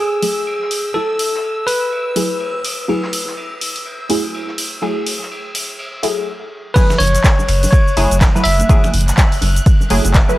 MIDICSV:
0, 0, Header, 1, 6, 480
1, 0, Start_track
1, 0, Key_signature, 3, "minor"
1, 0, Tempo, 483871
1, 943, Time_signature, 4, 2, 24, 8
1, 10299, End_track
2, 0, Start_track
2, 0, Title_t, "String machine"
2, 0, Program_c, 0, 50
2, 0, Note_on_c, 0, 88, 81
2, 6222, Note_off_c, 0, 88, 0
2, 6704, Note_on_c, 0, 90, 86
2, 10299, Note_off_c, 0, 90, 0
2, 10299, End_track
3, 0, Start_track
3, 0, Title_t, "Tine electric piano"
3, 0, Program_c, 1, 4
3, 0, Note_on_c, 1, 68, 85
3, 898, Note_off_c, 1, 68, 0
3, 934, Note_on_c, 1, 69, 95
3, 1653, Note_on_c, 1, 71, 92
3, 1681, Note_off_c, 1, 69, 0
3, 2579, Note_off_c, 1, 71, 0
3, 6688, Note_on_c, 1, 71, 107
3, 6929, Note_on_c, 1, 73, 117
3, 6943, Note_off_c, 1, 71, 0
3, 7633, Note_off_c, 1, 73, 0
3, 7645, Note_on_c, 1, 73, 93
3, 8100, Note_off_c, 1, 73, 0
3, 8369, Note_on_c, 1, 76, 118
3, 8822, Note_off_c, 1, 76, 0
3, 10299, End_track
4, 0, Start_track
4, 0, Title_t, "Synth stab"
4, 0, Program_c, 2, 62
4, 0, Note_on_c, 2, 54, 89
4, 0, Note_on_c, 2, 57, 83
4, 198, Note_off_c, 2, 54, 0
4, 199, Note_off_c, 2, 57, 0
4, 219, Note_on_c, 2, 54, 85
4, 222, Note_on_c, 2, 57, 81
4, 225, Note_on_c, 2, 64, 78
4, 228, Note_on_c, 2, 68, 97
4, 918, Note_off_c, 2, 54, 0
4, 920, Note_off_c, 2, 57, 0
4, 921, Note_off_c, 2, 64, 0
4, 922, Note_off_c, 2, 68, 0
4, 940, Note_on_c, 2, 54, 85
4, 943, Note_on_c, 2, 57, 77
4, 945, Note_on_c, 2, 64, 76
4, 949, Note_on_c, 2, 69, 93
4, 2119, Note_off_c, 2, 54, 0
4, 2120, Note_off_c, 2, 57, 0
4, 2121, Note_off_c, 2, 64, 0
4, 2123, Note_off_c, 2, 69, 0
4, 2140, Note_on_c, 2, 54, 87
4, 2143, Note_on_c, 2, 57, 81
4, 2145, Note_on_c, 2, 64, 81
4, 2149, Note_on_c, 2, 68, 99
4, 2839, Note_off_c, 2, 54, 0
4, 2840, Note_off_c, 2, 57, 0
4, 2841, Note_off_c, 2, 64, 0
4, 2843, Note_off_c, 2, 68, 0
4, 2859, Note_on_c, 2, 54, 86
4, 2862, Note_on_c, 2, 57, 77
4, 2865, Note_on_c, 2, 64, 82
4, 2867, Note_on_c, 2, 68, 98
4, 4038, Note_off_c, 2, 54, 0
4, 4039, Note_off_c, 2, 57, 0
4, 4041, Note_off_c, 2, 64, 0
4, 4042, Note_off_c, 2, 68, 0
4, 4060, Note_on_c, 2, 54, 86
4, 4063, Note_on_c, 2, 57, 77
4, 4066, Note_on_c, 2, 64, 80
4, 4068, Note_on_c, 2, 68, 96
4, 4759, Note_off_c, 2, 54, 0
4, 4760, Note_off_c, 2, 57, 0
4, 4762, Note_off_c, 2, 64, 0
4, 4763, Note_off_c, 2, 68, 0
4, 4779, Note_on_c, 2, 54, 90
4, 4782, Note_on_c, 2, 57, 82
4, 4786, Note_on_c, 2, 64, 80
4, 4788, Note_on_c, 2, 68, 95
4, 5958, Note_off_c, 2, 54, 0
4, 5960, Note_off_c, 2, 57, 0
4, 5961, Note_off_c, 2, 64, 0
4, 5963, Note_off_c, 2, 68, 0
4, 5980, Note_on_c, 2, 54, 90
4, 5983, Note_on_c, 2, 57, 80
4, 5986, Note_on_c, 2, 64, 82
4, 5989, Note_on_c, 2, 68, 94
4, 6222, Note_off_c, 2, 54, 0
4, 6223, Note_off_c, 2, 57, 0
4, 6225, Note_off_c, 2, 64, 0
4, 6226, Note_off_c, 2, 68, 0
4, 6699, Note_on_c, 2, 54, 93
4, 6702, Note_on_c, 2, 57, 81
4, 6705, Note_on_c, 2, 64, 83
4, 6708, Note_on_c, 2, 68, 99
4, 7878, Note_off_c, 2, 54, 0
4, 7880, Note_off_c, 2, 57, 0
4, 7881, Note_off_c, 2, 64, 0
4, 7883, Note_off_c, 2, 68, 0
4, 7902, Note_on_c, 2, 54, 96
4, 7904, Note_on_c, 2, 57, 93
4, 7905, Note_on_c, 2, 64, 88
4, 7907, Note_on_c, 2, 68, 107
4, 8251, Note_off_c, 2, 54, 0
4, 8252, Note_off_c, 2, 57, 0
4, 8253, Note_off_c, 2, 64, 0
4, 8254, Note_off_c, 2, 68, 0
4, 8285, Note_on_c, 2, 54, 80
4, 8287, Note_on_c, 2, 57, 75
4, 8288, Note_on_c, 2, 64, 70
4, 8290, Note_on_c, 2, 71, 92
4, 8541, Note_off_c, 2, 54, 0
4, 8542, Note_off_c, 2, 57, 0
4, 8542, Note_off_c, 2, 64, 0
4, 8543, Note_off_c, 2, 71, 0
4, 8619, Note_on_c, 2, 54, 92
4, 8622, Note_on_c, 2, 57, 84
4, 8625, Note_on_c, 2, 64, 82
4, 8629, Note_on_c, 2, 68, 104
4, 9798, Note_off_c, 2, 54, 0
4, 9800, Note_off_c, 2, 57, 0
4, 9801, Note_off_c, 2, 64, 0
4, 9803, Note_off_c, 2, 68, 0
4, 9823, Note_on_c, 2, 54, 99
4, 9824, Note_on_c, 2, 57, 90
4, 9825, Note_on_c, 2, 64, 86
4, 9827, Note_on_c, 2, 68, 106
4, 10172, Note_off_c, 2, 54, 0
4, 10172, Note_off_c, 2, 57, 0
4, 10173, Note_off_c, 2, 64, 0
4, 10174, Note_off_c, 2, 68, 0
4, 10206, Note_on_c, 2, 54, 81
4, 10208, Note_on_c, 2, 57, 72
4, 10209, Note_on_c, 2, 64, 74
4, 10211, Note_on_c, 2, 71, 84
4, 10299, Note_off_c, 2, 54, 0
4, 10299, Note_off_c, 2, 57, 0
4, 10299, Note_off_c, 2, 64, 0
4, 10299, Note_off_c, 2, 71, 0
4, 10299, End_track
5, 0, Start_track
5, 0, Title_t, "Sub bass"
5, 0, Program_c, 3, 38
5, 6943, Note_on_c, 3, 30, 100
5, 7118, Note_off_c, 3, 30, 0
5, 7425, Note_on_c, 3, 30, 103
5, 7599, Note_off_c, 3, 30, 0
5, 7904, Note_on_c, 3, 30, 95
5, 7999, Note_off_c, 3, 30, 0
5, 8047, Note_on_c, 3, 30, 96
5, 8190, Note_off_c, 3, 30, 0
5, 8384, Note_on_c, 3, 30, 79
5, 8559, Note_off_c, 3, 30, 0
5, 8865, Note_on_c, 3, 30, 104
5, 9039, Note_off_c, 3, 30, 0
5, 9345, Note_on_c, 3, 30, 108
5, 9519, Note_off_c, 3, 30, 0
5, 9824, Note_on_c, 3, 30, 93
5, 9919, Note_off_c, 3, 30, 0
5, 9967, Note_on_c, 3, 30, 89
5, 10111, Note_off_c, 3, 30, 0
5, 10299, End_track
6, 0, Start_track
6, 0, Title_t, "Drums"
6, 223, Note_on_c, 9, 46, 99
6, 228, Note_on_c, 9, 51, 68
6, 322, Note_off_c, 9, 46, 0
6, 327, Note_off_c, 9, 51, 0
6, 364, Note_on_c, 9, 51, 44
6, 461, Note_off_c, 9, 51, 0
6, 461, Note_on_c, 9, 51, 81
6, 560, Note_off_c, 9, 51, 0
6, 614, Note_on_c, 9, 38, 35
6, 699, Note_on_c, 9, 51, 66
6, 704, Note_on_c, 9, 46, 97
6, 713, Note_off_c, 9, 38, 0
6, 799, Note_off_c, 9, 51, 0
6, 803, Note_off_c, 9, 46, 0
6, 935, Note_on_c, 9, 51, 87
6, 1034, Note_off_c, 9, 51, 0
6, 1183, Note_on_c, 9, 46, 100
6, 1186, Note_on_c, 9, 51, 58
6, 1283, Note_off_c, 9, 46, 0
6, 1285, Note_off_c, 9, 51, 0
6, 1337, Note_on_c, 9, 38, 35
6, 1422, Note_on_c, 9, 51, 80
6, 1436, Note_off_c, 9, 38, 0
6, 1521, Note_off_c, 9, 51, 0
6, 1663, Note_on_c, 9, 51, 67
6, 1664, Note_on_c, 9, 46, 99
6, 1763, Note_off_c, 9, 46, 0
6, 1763, Note_off_c, 9, 51, 0
6, 1900, Note_on_c, 9, 51, 89
6, 1999, Note_off_c, 9, 51, 0
6, 2143, Note_on_c, 9, 46, 106
6, 2154, Note_on_c, 9, 51, 61
6, 2242, Note_off_c, 9, 46, 0
6, 2253, Note_off_c, 9, 51, 0
6, 2377, Note_on_c, 9, 51, 86
6, 2476, Note_off_c, 9, 51, 0
6, 2624, Note_on_c, 9, 46, 99
6, 2627, Note_on_c, 9, 51, 72
6, 2723, Note_off_c, 9, 46, 0
6, 2726, Note_off_c, 9, 51, 0
6, 2864, Note_on_c, 9, 51, 89
6, 2963, Note_off_c, 9, 51, 0
6, 3005, Note_on_c, 9, 38, 58
6, 3103, Note_on_c, 9, 51, 60
6, 3105, Note_off_c, 9, 38, 0
6, 3105, Note_on_c, 9, 46, 107
6, 3202, Note_off_c, 9, 51, 0
6, 3204, Note_off_c, 9, 46, 0
6, 3252, Note_on_c, 9, 38, 45
6, 3341, Note_on_c, 9, 51, 93
6, 3351, Note_off_c, 9, 38, 0
6, 3440, Note_off_c, 9, 51, 0
6, 3583, Note_on_c, 9, 51, 65
6, 3585, Note_on_c, 9, 46, 102
6, 3682, Note_off_c, 9, 51, 0
6, 3684, Note_off_c, 9, 46, 0
6, 3728, Note_on_c, 9, 46, 61
6, 3822, Note_on_c, 9, 51, 92
6, 3827, Note_off_c, 9, 46, 0
6, 3921, Note_off_c, 9, 51, 0
6, 4063, Note_on_c, 9, 51, 66
6, 4064, Note_on_c, 9, 46, 106
6, 4162, Note_off_c, 9, 51, 0
6, 4163, Note_off_c, 9, 46, 0
6, 4206, Note_on_c, 9, 51, 47
6, 4305, Note_off_c, 9, 51, 0
6, 4306, Note_on_c, 9, 51, 91
6, 4405, Note_off_c, 9, 51, 0
6, 4442, Note_on_c, 9, 38, 37
6, 4541, Note_off_c, 9, 38, 0
6, 4544, Note_on_c, 9, 46, 103
6, 4558, Note_on_c, 9, 51, 60
6, 4644, Note_off_c, 9, 46, 0
6, 4657, Note_off_c, 9, 51, 0
6, 4783, Note_on_c, 9, 51, 87
6, 4882, Note_off_c, 9, 51, 0
6, 5020, Note_on_c, 9, 51, 68
6, 5025, Note_on_c, 9, 46, 97
6, 5119, Note_off_c, 9, 51, 0
6, 5124, Note_off_c, 9, 46, 0
6, 5178, Note_on_c, 9, 38, 37
6, 5270, Note_on_c, 9, 51, 83
6, 5277, Note_off_c, 9, 38, 0
6, 5370, Note_off_c, 9, 51, 0
6, 5500, Note_on_c, 9, 51, 70
6, 5505, Note_on_c, 9, 46, 103
6, 5600, Note_off_c, 9, 51, 0
6, 5604, Note_off_c, 9, 46, 0
6, 5740, Note_on_c, 9, 51, 88
6, 5839, Note_off_c, 9, 51, 0
6, 5985, Note_on_c, 9, 46, 103
6, 5985, Note_on_c, 9, 51, 68
6, 6084, Note_off_c, 9, 46, 0
6, 6084, Note_off_c, 9, 51, 0
6, 6698, Note_on_c, 9, 51, 91
6, 6704, Note_on_c, 9, 36, 117
6, 6704, Note_on_c, 9, 60, 58
6, 6705, Note_on_c, 9, 42, 74
6, 6705, Note_on_c, 9, 49, 100
6, 6710, Note_on_c, 9, 82, 59
6, 6798, Note_off_c, 9, 51, 0
6, 6803, Note_off_c, 9, 36, 0
6, 6803, Note_off_c, 9, 60, 0
6, 6804, Note_off_c, 9, 42, 0
6, 6804, Note_off_c, 9, 49, 0
6, 6809, Note_off_c, 9, 82, 0
6, 6841, Note_on_c, 9, 64, 98
6, 6847, Note_on_c, 9, 26, 65
6, 6848, Note_on_c, 9, 38, 50
6, 6853, Note_on_c, 9, 82, 34
6, 6940, Note_off_c, 9, 64, 0
6, 6940, Note_on_c, 9, 64, 79
6, 6942, Note_on_c, 9, 60, 74
6, 6944, Note_on_c, 9, 51, 76
6, 6945, Note_on_c, 9, 46, 103
6, 6947, Note_off_c, 9, 26, 0
6, 6947, Note_off_c, 9, 38, 0
6, 6952, Note_off_c, 9, 82, 0
6, 7017, Note_on_c, 9, 42, 67
6, 7039, Note_off_c, 9, 64, 0
6, 7041, Note_off_c, 9, 60, 0
6, 7044, Note_off_c, 9, 51, 0
6, 7045, Note_off_c, 9, 46, 0
6, 7087, Note_on_c, 9, 38, 46
6, 7089, Note_off_c, 9, 42, 0
6, 7089, Note_on_c, 9, 42, 56
6, 7094, Note_on_c, 9, 82, 66
6, 7182, Note_on_c, 9, 39, 127
6, 7184, Note_on_c, 9, 36, 105
6, 7186, Note_off_c, 9, 38, 0
6, 7186, Note_off_c, 9, 42, 0
6, 7186, Note_on_c, 9, 38, 112
6, 7186, Note_on_c, 9, 42, 75
6, 7189, Note_on_c, 9, 51, 84
6, 7191, Note_off_c, 9, 82, 0
6, 7191, Note_on_c, 9, 82, 59
6, 7282, Note_off_c, 9, 39, 0
6, 7283, Note_off_c, 9, 36, 0
6, 7285, Note_off_c, 9, 38, 0
6, 7285, Note_off_c, 9, 42, 0
6, 7288, Note_off_c, 9, 51, 0
6, 7290, Note_off_c, 9, 82, 0
6, 7331, Note_on_c, 9, 60, 60
6, 7335, Note_on_c, 9, 82, 36
6, 7417, Note_on_c, 9, 51, 70
6, 7426, Note_on_c, 9, 26, 57
6, 7426, Note_on_c, 9, 46, 104
6, 7430, Note_off_c, 9, 60, 0
6, 7434, Note_off_c, 9, 82, 0
6, 7517, Note_off_c, 9, 51, 0
6, 7525, Note_off_c, 9, 26, 0
6, 7525, Note_off_c, 9, 46, 0
6, 7568, Note_on_c, 9, 46, 66
6, 7574, Note_on_c, 9, 60, 89
6, 7574, Note_on_c, 9, 82, 70
6, 7664, Note_on_c, 9, 36, 122
6, 7666, Note_on_c, 9, 42, 71
6, 7668, Note_off_c, 9, 46, 0
6, 7670, Note_on_c, 9, 51, 88
6, 7672, Note_off_c, 9, 82, 0
6, 7672, Note_on_c, 9, 82, 54
6, 7673, Note_off_c, 9, 60, 0
6, 7763, Note_off_c, 9, 36, 0
6, 7765, Note_off_c, 9, 42, 0
6, 7769, Note_off_c, 9, 51, 0
6, 7771, Note_off_c, 9, 82, 0
6, 7814, Note_on_c, 9, 82, 33
6, 7905, Note_on_c, 9, 46, 105
6, 7905, Note_on_c, 9, 51, 67
6, 7911, Note_on_c, 9, 60, 57
6, 7913, Note_off_c, 9, 82, 0
6, 8004, Note_off_c, 9, 46, 0
6, 8004, Note_off_c, 9, 51, 0
6, 8010, Note_off_c, 9, 60, 0
6, 8047, Note_on_c, 9, 51, 46
6, 8048, Note_on_c, 9, 42, 54
6, 8054, Note_on_c, 9, 82, 70
6, 8139, Note_on_c, 9, 38, 127
6, 8141, Note_off_c, 9, 51, 0
6, 8141, Note_on_c, 9, 39, 118
6, 8141, Note_on_c, 9, 51, 78
6, 8144, Note_on_c, 9, 36, 103
6, 8145, Note_off_c, 9, 42, 0
6, 8145, Note_on_c, 9, 42, 64
6, 8145, Note_on_c, 9, 60, 88
6, 8150, Note_off_c, 9, 82, 0
6, 8150, Note_on_c, 9, 82, 53
6, 8238, Note_off_c, 9, 38, 0
6, 8240, Note_off_c, 9, 51, 0
6, 8241, Note_off_c, 9, 39, 0
6, 8243, Note_off_c, 9, 36, 0
6, 8244, Note_off_c, 9, 42, 0
6, 8244, Note_off_c, 9, 60, 0
6, 8249, Note_off_c, 9, 82, 0
6, 8290, Note_on_c, 9, 38, 37
6, 8293, Note_on_c, 9, 82, 34
6, 8384, Note_on_c, 9, 46, 105
6, 8385, Note_on_c, 9, 51, 73
6, 8389, Note_off_c, 9, 38, 0
6, 8392, Note_off_c, 9, 82, 0
6, 8483, Note_off_c, 9, 46, 0
6, 8485, Note_off_c, 9, 51, 0
6, 8522, Note_on_c, 9, 63, 74
6, 8528, Note_on_c, 9, 42, 57
6, 8533, Note_on_c, 9, 82, 68
6, 8535, Note_on_c, 9, 60, 55
6, 8620, Note_on_c, 9, 51, 82
6, 8621, Note_off_c, 9, 63, 0
6, 8624, Note_on_c, 9, 36, 120
6, 8625, Note_off_c, 9, 42, 0
6, 8625, Note_on_c, 9, 42, 70
6, 8630, Note_off_c, 9, 82, 0
6, 8630, Note_on_c, 9, 82, 55
6, 8634, Note_off_c, 9, 60, 0
6, 8719, Note_off_c, 9, 51, 0
6, 8723, Note_off_c, 9, 36, 0
6, 8724, Note_off_c, 9, 42, 0
6, 8730, Note_off_c, 9, 82, 0
6, 8768, Note_on_c, 9, 60, 83
6, 8768, Note_on_c, 9, 63, 92
6, 8769, Note_on_c, 9, 26, 64
6, 8770, Note_on_c, 9, 64, 86
6, 8774, Note_on_c, 9, 82, 33
6, 8860, Note_on_c, 9, 51, 65
6, 8865, Note_off_c, 9, 64, 0
6, 8865, Note_on_c, 9, 46, 110
6, 8865, Note_on_c, 9, 64, 86
6, 8867, Note_off_c, 9, 63, 0
6, 8868, Note_off_c, 9, 26, 0
6, 8868, Note_off_c, 9, 60, 0
6, 8873, Note_off_c, 9, 82, 0
6, 8935, Note_on_c, 9, 42, 67
6, 8959, Note_off_c, 9, 51, 0
6, 8964, Note_off_c, 9, 46, 0
6, 8964, Note_off_c, 9, 64, 0
6, 9004, Note_on_c, 9, 39, 40
6, 9007, Note_off_c, 9, 42, 0
6, 9007, Note_on_c, 9, 42, 52
6, 9013, Note_on_c, 9, 82, 66
6, 9015, Note_on_c, 9, 38, 37
6, 9099, Note_off_c, 9, 38, 0
6, 9099, Note_on_c, 9, 38, 127
6, 9101, Note_off_c, 9, 39, 0
6, 9101, Note_on_c, 9, 39, 127
6, 9102, Note_on_c, 9, 51, 85
6, 9102, Note_on_c, 9, 60, 51
6, 9104, Note_off_c, 9, 42, 0
6, 9104, Note_on_c, 9, 36, 110
6, 9104, Note_on_c, 9, 42, 68
6, 9110, Note_off_c, 9, 82, 0
6, 9110, Note_on_c, 9, 82, 59
6, 9198, Note_off_c, 9, 38, 0
6, 9200, Note_off_c, 9, 39, 0
6, 9201, Note_off_c, 9, 51, 0
6, 9201, Note_off_c, 9, 60, 0
6, 9203, Note_off_c, 9, 42, 0
6, 9204, Note_off_c, 9, 36, 0
6, 9209, Note_off_c, 9, 82, 0
6, 9247, Note_on_c, 9, 46, 63
6, 9252, Note_on_c, 9, 82, 34
6, 9340, Note_on_c, 9, 60, 83
6, 9343, Note_on_c, 9, 51, 71
6, 9344, Note_off_c, 9, 46, 0
6, 9344, Note_on_c, 9, 46, 108
6, 9351, Note_off_c, 9, 82, 0
6, 9439, Note_off_c, 9, 60, 0
6, 9442, Note_off_c, 9, 51, 0
6, 9443, Note_off_c, 9, 46, 0
6, 9487, Note_on_c, 9, 42, 58
6, 9492, Note_on_c, 9, 82, 68
6, 9584, Note_off_c, 9, 42, 0
6, 9584, Note_on_c, 9, 42, 67
6, 9585, Note_on_c, 9, 36, 127
6, 9589, Note_off_c, 9, 82, 0
6, 9589, Note_on_c, 9, 51, 90
6, 9589, Note_on_c, 9, 82, 50
6, 9683, Note_off_c, 9, 42, 0
6, 9684, Note_off_c, 9, 36, 0
6, 9688, Note_off_c, 9, 51, 0
6, 9689, Note_off_c, 9, 82, 0
6, 9729, Note_on_c, 9, 60, 55
6, 9733, Note_on_c, 9, 82, 32
6, 9823, Note_on_c, 9, 46, 106
6, 9825, Note_on_c, 9, 63, 93
6, 9828, Note_off_c, 9, 60, 0
6, 9831, Note_on_c, 9, 51, 74
6, 9832, Note_off_c, 9, 82, 0
6, 9923, Note_off_c, 9, 46, 0
6, 9924, Note_off_c, 9, 63, 0
6, 9930, Note_off_c, 9, 51, 0
6, 9965, Note_on_c, 9, 60, 91
6, 9966, Note_on_c, 9, 42, 55
6, 9971, Note_on_c, 9, 82, 67
6, 10059, Note_on_c, 9, 39, 123
6, 10061, Note_on_c, 9, 38, 112
6, 10062, Note_off_c, 9, 42, 0
6, 10062, Note_on_c, 9, 42, 61
6, 10064, Note_off_c, 9, 60, 0
6, 10065, Note_on_c, 9, 36, 104
6, 10065, Note_on_c, 9, 51, 81
6, 10068, Note_off_c, 9, 82, 0
6, 10068, Note_on_c, 9, 82, 54
6, 10158, Note_off_c, 9, 39, 0
6, 10160, Note_off_c, 9, 38, 0
6, 10161, Note_off_c, 9, 42, 0
6, 10164, Note_off_c, 9, 36, 0
6, 10164, Note_off_c, 9, 51, 0
6, 10167, Note_off_c, 9, 82, 0
6, 10211, Note_on_c, 9, 82, 34
6, 10299, Note_off_c, 9, 82, 0
6, 10299, End_track
0, 0, End_of_file